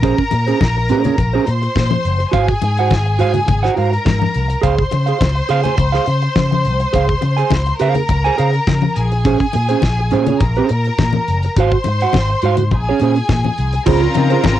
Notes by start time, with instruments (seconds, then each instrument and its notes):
Already playing: picked electric bass A#1, violin section A#4 A#5
0.02 clean electric guitar C#4 G#4 C5, kick, closed hi-hat, muted conga
0.18 muted clean electric guitar stroke, kick
0.31 picked electric bass A#2, muted clean electric guitar stroke, closed hi-hat, muted conga
0.46 clean electric guitar C#4 G#4 C5, closed hi-hat
0.61 picked electric bass A#1, muted clean electric guitar stroke, kick, snare, high conga
0.77 muted clean electric guitar stroke
0.89 picked electric bass A#2, clean electric guitar C#4 G#4 C5, closed hi-hat
1.04 clean electric guitar C#4 G#4 C#5, closed hi-hat, low conga
1.18 picked electric bass A#1, muted clean electric guitar stroke, kick, closed hi-hat, muted conga
1.33 clean electric guitar C#4 G#4 C5
1.46 picked electric bass A#2, violin section C5 C6, muted clean electric guitar stroke, closed hi-hat, muted conga
1.62 muted clean electric guitar stroke, closed hi-hat
1.75 picked electric bass A#2, muted clean electric guitar stroke, kick, snare, high conga
1.90 muted clean electric guitar stroke, high conga
2.05 picked electric bass F#1, closed hi-hat
2.19 muted clean electric guitar stroke, closed hi-hat
2.32 picked electric bass G#1, clean electric guitar F#4 C5 F5, violin section G#4 G#5, kick, closed hi-hat, muted conga
2.48 muted clean electric guitar stroke, kick, closed hi-hat
2.62 picked electric bass G#2, muted clean electric guitar stroke, closed hi-hat, muted conga
2.77 clean electric guitar F#4 C5 F#5, closed hi-hat
2.91 picked electric bass G#1, kick, snare, high conga
3.06 muted clean electric guitar stroke
3.19 picked electric bass G#2, clean electric guitar F#4 C5 F5, closed hi-hat
3.34 muted clean electric guitar stroke, closed hi-hat, low conga
3.46 picked electric bass G#1, muted clean electric guitar stroke, kick, closed hi-hat, muted conga, low conga
3.63 clean electric guitar F#4 C5 F#5, snare, closed hi-hat
3.75 picked electric bass G#2, clean electric guitar F#4 C5 F5, violin section A#4 A#5, closed hi-hat, muted conga
3.92 muted clean electric guitar stroke, closed hi-hat
4.05 picked electric bass G#2, muted clean electric guitar stroke, kick, snare, high conga
4.20 muted clean electric guitar stroke, high conga
4.34 picked electric bass C2, closed hi-hat
4.48 muted clean electric guitar stroke, closed hi-hat
4.62 picked electric bass C#2, clean electric guitar G#4 C5 F5, violin section C5 C6, kick, closed hi-hat, muted conga
4.77 muted clean electric guitar stroke, kick
4.91 picked electric bass C#3, muted clean electric guitar stroke, closed hi-hat, muted conga
5.06 clean electric guitar G#4 C5 F5, closed hi-hat
5.21 picked electric bass C#2, muted clean electric guitar stroke, kick, snare, high conga
5.35 muted clean electric guitar stroke, closed hi-hat
5.49 picked electric bass C#3, clean electric guitar G#4 C5 F5, closed hi-hat
5.64 clean electric guitar G#4 C5 G#5, closed hi-hat, low conga
5.78 picked electric bass C#2, muted clean electric guitar stroke, kick, closed hi-hat, muted conga
5.92 clean electric guitar G#4 C5 F5, snare, closed hi-hat
6.06 picked electric bass C#3, muted clean electric guitar stroke, closed hi-hat, muted conga
6.22 muted clean electric guitar stroke, closed hi-hat
6.36 picked electric bass C#3, muted clean electric guitar stroke, kick, snare, high conga
6.51 muted clean electric guitar stroke, high conga
6.65 picked electric bass C2, closed hi-hat
6.80 muted clean electric guitar stroke, closed hi-hat
6.93 picked electric bass C#2, clean electric guitar G#4 C5 F5, kick, closed hi-hat, muted conga
7.08 muted clean electric guitar stroke, kick
7.21 picked electric bass C#3, muted clean electric guitar stroke, closed hi-hat, muted conga
7.36 clean electric guitar G#4 C5 G#5, closed hi-hat
7.50 picked electric bass C#2, kick, snare, high conga
7.66 muted clean electric guitar stroke, closed hi-hat
7.79 picked electric bass C#3, clean electric guitar G#4 C5 F5, violin section A#4 A#5, closed hi-hat
7.95 muted clean electric guitar stroke, closed hi-hat, low conga
8.09 picked electric bass C#2, muted clean electric guitar stroke, kick, closed hi-hat, muted conga
8.24 clean electric guitar G#4 C5 G#5, closed hi-hat
8.38 picked electric bass C#3, clean electric guitar G#4 C5 F5, closed hi-hat
8.53 muted clean electric guitar stroke, closed hi-hat
8.67 picked electric bass C#3, muted clean electric guitar stroke, kick, snare, high conga
8.82 muted clean electric guitar stroke, high conga
8.96 picked electric bass A#1, violin section G#4 G#5, closed hi-hat
9.12 muted clean electric guitar stroke, closed hi-hat
9.25 clean electric guitar C#4 G#4 C5, kick, closed hi-hat, muted conga
9.40 muted clean electric guitar stroke, kick, closed hi-hat
9.53 picked electric bass A#2, muted clean electric guitar stroke, closed hi-hat, muted conga
9.69 clean electric guitar C#4 G#4 C5, closed hi-hat
9.82 picked electric bass A#1, muted clean electric guitar stroke, kick, snare, high conga
9.99 muted clean electric guitar stroke
10.11 picked electric bass A#2, clean electric guitar C#4 G#4 C5, closed hi-hat
10.26 clean electric guitar C#4 G#4 C#5, closed hi-hat, low conga
10.40 picked electric bass A#1, violin section A#4 A#5, muted clean electric guitar stroke, kick, closed hi-hat, muted conga
10.56 clean electric guitar C#4 G#4 C5, closed hi-hat
10.69 picked electric bass A#2, muted clean electric guitar stroke, closed hi-hat
10.84 muted clean electric guitar stroke, closed hi-hat
10.98 picked electric bass A#2, muted clean electric guitar stroke, kick, snare, high conga
11.13 muted clean electric guitar stroke, high conga
11.28 picked electric bass F#1, closed hi-hat
11.43 muted clean electric guitar stroke, closed hi-hat
11.56 picked electric bass G#1, clean electric guitar F#4 C5 F5, violin section C5 C6, kick, closed hi-hat, muted conga
11.72 muted clean electric guitar stroke, kick
11.84 picked electric bass G#2, muted clean electric guitar stroke, closed hi-hat, muted conga
12.00 clean electric guitar F#4 C5 F#5, closed hi-hat
12.13 picked electric bass G#1, kick, snare, high conga
12.30 muted clean electric guitar stroke
12.42 picked electric bass G#2, clean electric guitar F#4 C5 F5, closed hi-hat
12.57 muted clean electric guitar stroke, closed hi-hat, low conga
12.71 picked electric bass A#1, violin section G#4 G#5, muted clean electric guitar stroke, kick, closed hi-hat, muted conga
12.89 clean electric guitar C#4 G#4 C#5
13.00 picked electric bass A#2, clean electric guitar C#4 G#4 C5, closed hi-hat, muted conga
13.16 muted clean electric guitar stroke, closed hi-hat
13.29 picked electric bass A#2, muted clean electric guitar stroke, kick, snare, high conga
13.45 muted clean electric guitar stroke, high conga
13.58 picked electric bass C2, closed hi-hat
13.73 muted clean electric guitar stroke, closed hi-hat
13.85 picked electric bass C#2, string section C#3 C4 F4, grand piano C#3, clean electric guitar F4 G#4 C5, violin section A#4 A#5, kick, crash, muted conga
14.02 grand piano F3 C4, muted clean electric guitar stroke
14.14 picked electric bass C#3, grand piano D#3 F3 C4, muted clean electric guitar stroke, closed hi-hat, muted conga
14.30 clean electric guitar F4 G#4 C5, closed hi-hat
14.44 picked electric bass G#1, grand piano F3 C4, muted clean electric guitar stroke, kick, snare, high conga